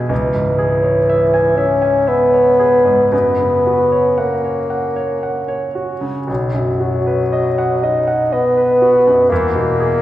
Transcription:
Already playing: B2 G#4 B4 E5 G#5
0.09 C#2 E3
0.34 G#2
0.59 G#4
0.83 C#5
1.09 E5
1.34 G#5
1.57 C#4 E5
1.82 G#5
2.08 B3 E5
2.33 C#5
2.59 G#4
2.85 G#2
3.12 F#2 B3
3.38 C#3
3.67 F#4
3.92 C#5
4.18 A#3 F#5
4.45 C#5
4.70 F#5
4.96 C#5
5.23 F#5
5.48 C#5
5.75 F#4
6.01 C#3
6.27 B1 F#3
6.54 F#2
6.80 F#4
7.07 B4
7.33 D#5
7.58 F#5
7.83 D#4 D#5
8.08 F#5
8.32 B3 D#5
8.57 B4
8.82 F#4
9.07 F#2
9.30 E2 A#3
9.55 B2
9.80 G#4

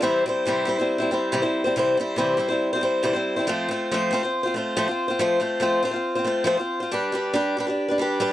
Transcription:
0.01 C3 E3 G3 C4 E4 C5
0.26 G3 C4 E4 C5
0.46 C3 E3 G3 C4 E4 C5
0.65 G3 C4 E4 C5
0.78 G3 C4 E4 C5
0.98 C4 E4 C5
1.02 G3
1.11 G3 C4 E4 C5
1.32 C3 E3 G3 C4 E4 C5
1.42 G3 C4 E4 C5
1.64 G3 C4 E4 C5
1.76 C3 E3 G3 C4 E4 C5
1.97 G3 C4 E4 C5
2.16 C3 E3 G3 C4 E4 C5
2.37 G3 C4 E4 C5
2.49 G3 C4 E4 C5
2.73 G3 C4 E4 C5
2.81 G3 C4 E4 C5
3.03 C3 E3 G3 C4 E4 C5
3.13 G3 C4 E4 C5
3.36 C4 E4 C5
3.40 G3
3.47 F3 A3 C4 F4 C5
3.68 A3 C4 F4 C5
3.91 F3 A3 C4 F4 C5
4.11 A3 C4 F4 C5
4.23 C4 F4 C5
4.43 F4 C5
4.47 C4
4.54 A3 C4 F4 C5
4.77 F3 A3 C4 F4 C5
4.88 C4 F4 C5
5.08 C4 F4 C5
5.19 F3 A3 C4 F4 C5
5.40 A3 C4 F4 C5
5.60 F3 A3 C4 F4 C5
5.83 A3 C4 F4 C5
5.91 F4 C5
5.96 C4
6.15 C4 F4 C5
6.24 A3 C4 F4 C5
6.44 F3 A3 C4 F4 C5
6.57 C4 F4 C5
6.80 C4 F4 C5
6.91 G3 D4 G4 B4
7.12 G3 D4 G4 B4
7.33 G3 D4 G4 B4
7.57 G3 D4 G4 B4
7.67 D4 G4 B4
7.88 D4 G4 B4
7.98 G3 D4 G4 B4
8.20 G3 D4 G4 B4

